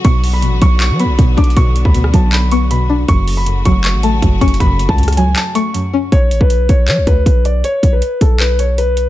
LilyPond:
<<
  \new Staff \with { instrumentName = "Grand piano" } { \time 4/4 \key fis \minor \tempo 4 = 158 cis'''8. b''8. cis'''8 cis'''8 b''4 d'''8 | cis'''8. b''8. a''8 b''8 cis'''8 b''4 | cis'''8. b''8. cis'''8 cis'''8 a''4 cis'''8 | b''8. a''8. gis''8 a''8 cis'''4. |
cis''8. b'8. cis''8 cis''8 b'4 d''8 | cis''8. b'8. a'8 b'8 cis''8 b'4 | }
  \new Staff \with { instrumentName = "String section" } { \clef bass \time 4/4 \key fis \minor <d fis b fis'>1~ | <d fis b fis'>1 | <cis fis a fis'>1~ | <cis fis a fis'>1 |
r1 | r1 | }
  \new Staff \with { instrumentName = "Synth pluck" } { \clef bass \time 4/4 \key fis \minor b,4 b,8 fis4 b8 b,8 d'8 | b,4 b,8 fis4 b8 b,8 d'8 | fis,4 fis,8 fis4 a8 fis,8 cis'8 | fis,4 fis,8 fis4 a8 fis,8 cis'8 |
r1 | r1 | }
  \new Staff \with { instrumentName = "808-style bass" } { \clef bass \time 4/4 \key fis \minor b,,4 a,,8 b,,8. fis16. b,,16. b,,8 b,,8 | b,,8. d,8. b,,2~ b,,8 | fis,,4. fis,,8. a,,8. fis,,8 fis,,8 | fis,,8. cis,4~ cis,16 r2 |
b,,8 a,,16 b,,8. b,,8 fis16 b,,16 d,8 b,,4 | r8 b,,8 r8 b,,2~ b,,8 | }
  \new DrumStaff \with { instrumentName = "Drums" } \drummode { \time 4/4 <hh bd>8 hho8 hh8 <hh bd>8 <hc hh>8 hh8 \tuplet 3/2 { <hh bd>16 r16 r16 <hh bd>16 hh16 hh16 } | <hh bd>8 hh16 bd16 hh16 ss16 <hh bd>8 <hc hh>8 hh8 hh4 | <hh bd>8 hho8 hh8 <hh bd>8 <hc hh>8 hh8 \tuplet 3/2 { <hh bd>16 r16 r16 <hh bd>16 hh16 hh16 } | <hh bd>8 hh16 bd16 hh32 hh32 <hh ss>32 hh32 hh8 <hc hh>8 hh8 hh4 |
<hh bd>8 hh16 bd16 hh8 <hh bd>8 <hc hh>8 <hh bd>8 <hh bd>8 hh8 | hh8 <hh bd>8 hh8 <hh bd>8 <hc hh>8 hh8 hh8 hh8 | }
>>